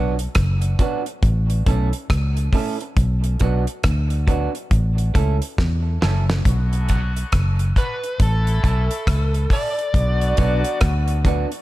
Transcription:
0.00 0.26 B1 loud
0.00 0.13 F#3 medium
0.00 0.14 B3 medium
0.00 0.14 D4 medium
0.00 0.14 F#4 loud
0.19 closed hi-hat medium
0.35 0.75 F#1 medium
0.35 kick loud
0.35 cross-stick loud
0.35 closed hi-hat medium
0.62 closed hi-hat medium
0.79 1.01 F#3 medium
0.79 1.01 B3 medium
0.79 1.01 D4 medium
0.79 1.02 F#4 loud
0.79 kick loud
0.79 closed hi-hat medium
1.06 closed hi-hat medium
1.23 1.62 A1 loud
1.23 kick loud
1.23 closed hi-hat medium
1.50 closed hi-hat medium
1.66 1.91 B1 loud
1.66 1.88 A3 medium
1.66 1.88 C#4 medium
1.66 1.88 E4 medium
1.66 1.89 A4 medium
1.66 kick loud
1.66 closed hi-hat medium
1.93 closed hi-hat medium
2.10 2.49 C#2 medium
2.10 kick loud
2.10 cross-stick loud
2.10 closed hi-hat medium
2.37 closed hi-hat medium
2.53 2.75 A3 medium
2.53 2.75 C#4 loud
2.53 2.75 E4 loud
2.53 2.76 A4 medium
2.53 kick loud
2.53 open hi-hat medium
2.81 muted clean electric guitar stroke soft
2.81 closed hi-hat medium
2.97 3.36 B1 medium
2.97 kick loud
2.97 closed hi-hat medium
3.24 closed hi-hat soft
3.40 3.65 B1 loud
3.40 3.62 F#3 medium
3.40 3.62 B3 medium
3.40 3.63 D4 medium
3.40 3.63 F#4 loud
3.40 kick loud
3.40 closed hi-hat medium
3.67 closed hi-hat medium
3.83 4.47 D2 loud
3.83 kick loud
3.83 cross-stick loud
3.83 closed hi-hat medium
4.10 closed hi-hat soft
4.27 4.49 F#3 medium
4.27 4.49 B3 medium
4.27 4.49 D4 loud
4.27 4.50 F#4 loud
4.27 kick loud
4.27 closed hi-hat medium
4.55 closed hi-hat medium
4.71 5.10 A1 loud
4.71 kick loud
4.71 closed hi-hat medium
4.98 closed hi-hat medium
5.14 5.39 C#2 loud
5.14 5.36 A3 medium
5.14 5.36 C#4 medium
5.14 5.37 E4 medium
5.14 5.37 A4 medium
5.14 kick loud
5.14 closed hi-hat medium
5.42 closed hi-hat medium
5.58 5.97 E2 medium
5.58 kick loud
5.58 snare medium
6.01 6.41 F#1 medium
6.01 6.23 A3 medium
6.01 6.23 C#4 medium
6.01 6.24 E4 medium
6.01 6.24 A4 medium
6.01 snare medium
6.29 muted clean electric guitar stroke soft
6.29 snare medium
6.45 7.23 B1 medium
6.45 7.73 D3 medium
6.45 7.73 F#3 medium
6.45 7.73 B3 medium
6.45 7.73 F#4 medium
6.45 kick loud
6.45 closed hi-hat medium
6.73 closed hi-hat medium
6.89 7.10 F#3 medium
6.89 7.11 B3 medium
6.89 7.11 D4 medium
6.89 7.11 F#4 medium
6.89 kick medium
6.89 closed hi-hat medium
7.17 closed hi-hat medium
7.32 7.72 F#1 medium
7.32 kick loud
7.32 cross-stick loud
7.32 closed hi-hat medium
7.59 closed hi-hat medium
7.76 7.98 F#3 medium
7.76 7.98 B3 medium
7.76 7.98 D4 medium
7.76 7.98 F#4 medium
7.76 8.22 B4 medium
7.76 kick medium
7.76 closed hi-hat medium
8.04 closed hi-hat medium
8.19 8.59 A1 loud
8.19 9.48 C#3 medium
8.19 9.48 E3 medium
8.19 9.48 A3 medium
8.19 9.48 E4 medium
8.19 9.55 A4 medium
8.19 kick loud
8.19 closed hi-hat medium
8.47 closed hi-hat medium
8.63 8.88 B1 loud
8.63 8.85 A3 medium
8.63 8.85 C#4 medium
8.63 8.85 E4 medium
8.63 8.86 A4 medium
8.63 kick loud
8.63 closed hi-hat medium
8.91 closed hi-hat medium
9.07 9.46 C#2 medium
9.07 kick loud
9.07 cross-stick loud
9.07 closed hi-hat medium
9.34 closed hi-hat soft
9.50 9.72 A3 medium
9.50 9.72 C#4 medium
9.50 9.73 E4 medium
9.50 9.73 A4 medium
9.50 10.78 D5 medium
9.50 kick medium
9.50 open hi-hat medium
9.78 muted clean electric guitar stroke soft
9.78 closed hi-hat soft
9.93 10.33 B1 medium
9.93 11.22 D3 medium
9.93 11.22 F#3 medium
9.93 11.22 B3 medium
9.93 11.22 F#4 loud
9.93 kick loud
9.93 closed hi-hat medium
10.21 closed hi-hat soft
10.37 10.62 B1 loud
10.37 10.59 F#3 medium
10.37 10.59 B3 medium
10.37 10.60 D4 medium
10.37 10.60 F#4 medium
10.37 kick medium
10.37 closed hi-hat medium
10.64 closed hi-hat medium
10.81 11.44 D2 medium
10.81 kick loud
10.81 cross-stick loud
10.81 closed hi-hat medium
11.08 closed hi-hat medium
11.25 11.46 F#3 medium
11.25 11.46 B3 medium
11.25 11.47 D4 medium
11.25 11.47 F#4 loud
11.25 kick loud
11.25 closed hi-hat medium
11.52 closed hi-hat medium

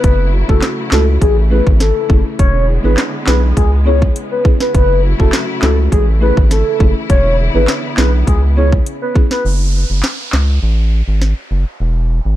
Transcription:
0.00 0.44 F#1 loud
0.00 2.36 C#3 medium
0.00 1.20 F#3 medium
0.00 2.37 A3 medium
0.00 4.71 E4 medium
0.00 0.30 B4 loud
0.00 kick loud
0.00 closed hi-hat medium
0.32 0.39 E4 medium
0.32 0.40 F#4 medium
0.48 0.61 F#1 medium
0.48 0.60 A3 medium
0.48 0.60 C#4 medium
0.48 0.60 E4 medium
0.48 0.60 F#4 medium
0.48 0.61 A4 medium
0.48 kick medium
0.62 snare loud
0.62 clap loud
0.62 closed hi-hat medium
0.91 1.18 C#2 loud
0.91 1.04 A3 medium
0.91 1.04 C#4 medium
0.91 1.05 E4 medium
0.91 1.05 F#4 medium
0.91 1.06 A4 medium
0.91 snare loud
0.91 clap medium
1.21 1.61 A1 loud
1.21 2.38 E3 medium
1.21 1.35 G#4 medium
1.21 kick medium
1.21 closed hi-hat medium
1.50 1.63 A3 medium
1.50 1.63 C#4 medium
1.50 1.64 E4 medium
1.50 1.64 G#4 medium
1.50 1.65 B4 medium
1.67 1.93 G#1 medium
1.67 kick medium
1.80 2.23 A4 medium
1.80 snare medium
1.80 closed hi-hat medium
2.09 2.24 F#1 loud
2.09 2.22 A3 medium
2.09 2.22 C#4 medium
2.09 2.22 E4 medium
2.09 2.23 G#4 medium
2.09 kick loud
2.39 2.79 E1 loud
2.39 3.56 D3 medium
2.39 4.72 G#3 medium
2.39 4.72 B3 medium
2.39 2.65 C#5 loud
2.39 kick loud
2.39 closed hi-hat medium
2.68 2.74 E4 medium
2.68 2.75 G#4 medium
2.83 2.96 G#1 medium
2.83 2.95 B3 medium
2.83 2.95 D4 medium
2.83 2.95 E4 medium
2.83 2.96 G#4 medium
2.83 2.97 B4 medium
2.98 snare loud
2.98 clap loud
2.98 closed hi-hat medium
3.26 3.53 B1 loud
3.26 3.39 B3 medium
3.26 3.40 D4 medium
3.26 3.40 E4 medium
3.26 3.40 G#4 medium
3.26 3.41 B4 medium
3.26 snare loud
3.26 clap loud
3.57 4.09 C#2 loud
3.57 7.06 C#3 medium
3.57 3.71 G#4 medium
3.57 kick medium
3.57 closed hi-hat medium
3.85 3.98 B3 medium
3.85 3.99 C#4 medium
3.85 3.99 E4 medium
3.85 3.99 G#4 medium
3.85 4.00 C#5 medium
4.02 kick loud
4.16 closed hi-hat medium
4.31 4.44 B4 medium
4.44 4.57 B3 medium
4.44 4.57 C#4 medium
4.44 4.58 E4 medium
4.44 4.58 G#4 medium
4.44 kick loud
4.60 4.73 B4 medium
4.60 snare medium
4.74 5.14 F#1 loud
4.74 5.91 F#3 medium
4.74 7.07 A3 medium
4.74 5.91 E4 medium
4.74 5.01 B4 loud
4.74 kick loud
4.74 closed hi-hat medium
5.03 5.10 E4 medium
5.03 5.11 F#4 medium
5.18 5.32 F#1 medium
5.18 5.30 A3 medium
5.18 5.30 C#4 medium
5.18 5.31 E4 medium
5.18 5.31 F#4 medium
5.18 5.32 A4 medium
5.18 kick medium
5.33 snare loud
5.33 clap loud
5.33 closed hi-hat medium
5.62 5.89 C#2 medium
5.62 5.75 A3 medium
5.62 5.75 C#4 medium
5.62 5.75 E4 medium
5.62 5.76 F#4 medium
5.62 5.77 A4 medium
5.62 snare loud
5.62 clap loud
5.92 6.32 A1 loud
5.92 9.42 E3 medium
5.92 9.42 E4 loud
5.92 6.06 G#4 medium
5.92 kick medium
5.92 closed hi-hat medium
6.21 6.34 A3 medium
6.21 6.34 C#4 medium
6.21 6.34 E4 medium
6.21 6.34 G#4 medium
6.21 6.35 B4 medium
6.37 6.63 G#1 medium
6.37 kick medium
6.51 6.93 A4 medium
6.51 snare medium
6.51 closed hi-hat medium
6.79 6.94 F#1 loud
6.79 6.92 A3 medium
6.79 6.93 C#4 medium
6.79 6.93 E4 medium
6.79 6.93 G#4 medium
6.79 kick loud
7.10 7.50 E1 loud
7.10 8.26 D3 medium
7.10 9.43 B3 medium
7.10 7.36 C#5 loud
7.10 kick loud
7.10 closed hi-hat medium
7.38 7.45 E4 medium
7.38 7.46 G#4 medium
7.54 7.67 G#1 medium
7.54 7.65 B3 medium
7.54 7.66 D4 medium
7.54 7.66 E4 medium
7.54 7.66 G#4 medium
7.54 7.67 B4 medium
7.68 snare loud
7.68 clap loud
7.68 closed hi-hat medium
7.97 8.24 B1 loud
7.97 8.10 B3 medium
7.97 8.10 D4 medium
7.97 8.11 E4 medium
7.97 8.11 G#4 medium
7.97 8.12 B4 medium
7.97 snare loud
7.97 clap loud
8.27 8.79 C#2 loud
8.27 9.44 C#3 medium
8.27 8.41 G#4 medium
8.27 kick medium
8.27 closed hi-hat medium
8.56 8.69 B3 medium
8.56 8.69 C#4 medium
8.56 8.69 E4 medium
8.56 8.70 G#4 medium
8.56 8.71 C#5 medium
8.72 kick medium
8.86 closed hi-hat medium
9.02 9.14 B4 medium
9.15 9.28 B3 medium
9.15 9.28 C#4 medium
9.15 9.28 E4 medium
9.15 9.29 G#4 medium
9.15 kick loud
9.31 9.44 B4 medium
9.31 snare medium
9.45 9.85 F#1 loud
9.45 downlifter medium
9.90 10.02 F#1 medium
10.03 snare loud
10.03 clap medium
10.33 10.59 C#2 medium
10.33 snare loud
10.33 clap medium
10.63 11.02 A1 loud
11.08 11.34 G#1 medium
11.22 snare medium
11.51 11.65 F#1 medium
11.80 12.20 E1 loud
12.25 12.36 G#1 medium

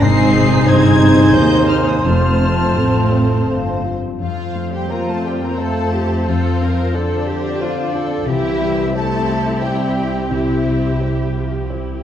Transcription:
0.01 0.65 G#1 loud
0.01 0.65 G#2 medium
0.01 0.66 G#2 loud
0.01 2.07 C3 medium
0.01 0.66 C4 medium
0.01 1.87 D#4 loud
0.01 2.07 D#4 medium
0.01 1.35 D#4 loud
0.01 1.87 G#4 loud
0.01 0.67 G#4 loud
0.01 3.83 C5 medium
0.01 0.66 C5 medium
0.01 2.04 G#5 medium
0.01 0.67 C7 loud
0.34 0.86 C4 medium
0.66 1.33 G1 loud
0.66 1.33 G2 medium
0.66 1.00 C4 medium
0.66 2.07 D#4 medium
0.66 1.20 C5 medium
0.66 2.04 C5 medium
0.66 1.34 G#6 loud
1.00 1.34 C4 medium
1.00 1.55 D#4 medium
1.33 2.04 D#2 loud
1.33 2.05 D#2 medium
1.33 2.05 A#3 medium
1.33 2.04 D#4 medium
1.33 1.90 C5 medium
1.33 2.07 D#5 medium
1.33 1.69 G6 loud
1.69 2.05 D#4 medium
1.69 3.12 C5 medium
1.69 1.86 F6 medium
1.88 2.05 D#6 medium
2.04 2.74 F1 medium
2.04 3.44 F2 medium
2.04 4.21 F2 medium
2.04 2.74 F2 medium
2.04 3.82 A3 medium
2.04 4.00 A3 medium
2.04 3.82 C4 medium
2.04 4.00 C4 medium
2.04 3.87 F4 medium
2.04 3.96 C5 medium
2.04 3.87 A5 medium
2.04 3.49 F6 medium
2.40 2.97 C4 soft
2.40 4.55 C4 medium
2.76 3.48 A1 medium
2.76 3.49 A2 medium
2.76 4.91 F4 medium
2.76 3.34 A4 soft
3.12 3.70 C5 soft
3.12 3.85 C5 medium
3.48 4.19 G1 medium
3.48 4.19 G2 medium
3.48 4.06 A4 soft
3.48 5.58 F5 medium
3.85 4.20 F4 soft
3.85 5.24 C5 medium
4.20 6.23 F2 medium
4.20 8.23 F2 medium
4.20 6.27 F2 medium
4.20 4.69 F3 medium
4.20 8.23 C4 medium
4.20 4.69 F4 medium
4.20 8.23 C5 medium
4.20 4.70 F5 medium
4.55 5.11 A3 soft
4.55 6.61 C4 soft
4.71 4.89 G3 medium
4.71 4.90 G4 medium
4.71 4.91 G5 medium
4.89 5.07 A#3 medium
4.89 5.55 F4 medium
4.89 6.95 F4 soft
4.89 5.08 A#4 medium
4.89 5.44 C5 soft
4.89 5.07 A#5 medium
5.06 5.24 A3 medium
5.06 5.25 A4 medium
5.06 5.25 A5 medium
5.24 5.41 G3 medium
5.24 5.42 G4 medium
5.24 5.79 A4 soft
5.24 5.93 C5 soft
5.24 5.42 G5 medium
5.41 5.59 A#3 medium
5.41 5.59 A#4 medium
5.41 5.60 A#5 medium
5.58 6.28 A3 medium
5.58 5.93 A4 medium
5.58 6.28 A4 medium
5.58 6.13 C5 soft
5.58 7.60 F5 medium
5.58 6.28 A5 medium
5.93 6.48 F4 soft
5.93 6.28 G4 medium
5.93 7.27 C5 medium
6.28 8.23 F2 medium
6.28 8.30 F2 medium
6.28 6.95 F3 medium
6.28 6.95 F4 medium
6.28 6.61 A4 medium
6.28 6.95 F5 medium
6.61 7.14 C4 soft
6.61 8.60 C4 soft
6.61 6.95 A#4 medium
6.93 8.26 D3 medium
6.93 8.27 D4 medium
6.93 8.30 F4 medium
6.93 7.28 A4 medium
6.93 7.47 C5 soft
6.93 8.27 D5 medium
7.27 7.61 G4 medium
7.27 7.80 A4 soft
7.27 7.94 C5 medium
7.61 7.94 F4 medium
7.61 8.13 C5 medium
7.61 8.30 F5 medium
7.94 8.27 F4 medium
7.94 8.27 A4 medium
7.94 9.28 C5 medium
8.26 10.26 C2 medium
8.26 12.03 C2 medium
8.26 10.31 C3 medium
8.26 8.94 E3 medium
8.26 10.90 C4 medium
8.26 8.95 E4 medium
8.26 8.95 G4 medium
8.26 10.90 G4 medium
8.26 8.95 E5 medium
8.61 9.15 G3 medium
8.61 10.65 C4 medium
8.94 9.62 A3 medium
8.94 10.31 E4 medium
8.94 11.00 G4 medium
8.94 9.61 A4 medium
8.94 9.49 C5 soft
8.94 9.61 A5 loud
9.28 9.82 G4 medium
9.28 9.96 C5 medium
9.62 10.29 G3 medium
9.62 10.31 G4 medium
9.62 10.17 C5 soft
9.62 10.31 G5 medium
9.62 11.69 G5 medium
9.97 10.52 G4 soft
9.97 11.35 C5 medium
10.30 12.03 C2 medium
10.30 12.03 C3 soft
10.30 11.71 E4 medium
10.30 11.68 E4 medium
10.30 12.02 G4 medium
10.30 11.70 E5 medium
10.65 11.21 G3 soft
10.65 12.03 C4 soft
11.01 11.33 G4 medium
11.01 12.03 G4 soft
11.01 11.56 C5 soft
11.35 11.70 F3 soft
11.35 11.91 G4 soft
11.35 12.03 C5 soft
11.70 12.03 E4 soft
11.70 12.03 C5 soft
11.70 12.03 G5 soft

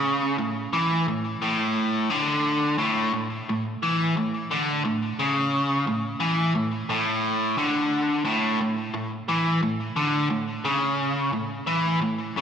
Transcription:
0.00 0.38 C#3 medium
0.39 0.67 A2 medium
0.73 1.07 E3 medium
1.08 1.36 A2 medium
1.42 2.10 A2 medium
2.10 2.78 D3 medium
2.78 3.12 A2 medium
3.14 3.41 A2 medium
3.49 3.76 A2 medium
3.83 4.15 E3 medium
4.17 4.44 A2 medium
4.51 4.84 D3 medium
4.85 5.12 A2 medium
5.19 5.86 C#3 medium
5.87 6.15 A2 medium
6.20 6.54 E3 medium
6.55 6.83 A2 medium
6.90 7.57 A2 medium
7.58 8.24 D3 medium
8.25 8.59 A2 loud
8.61 8.88 A2 medium
8.94 9.22 A2 medium
9.29 9.62 E3 medium
9.63 9.91 A2 medium
9.96 10.30 D3 medium
10.30 10.59 A2 medium
10.65 11.33 C#3 medium
11.33 11.61 A2 medium
11.67 12.01 E3 medium
12.02 12.30 A2 medium
12.37 12.41 C#3 loud

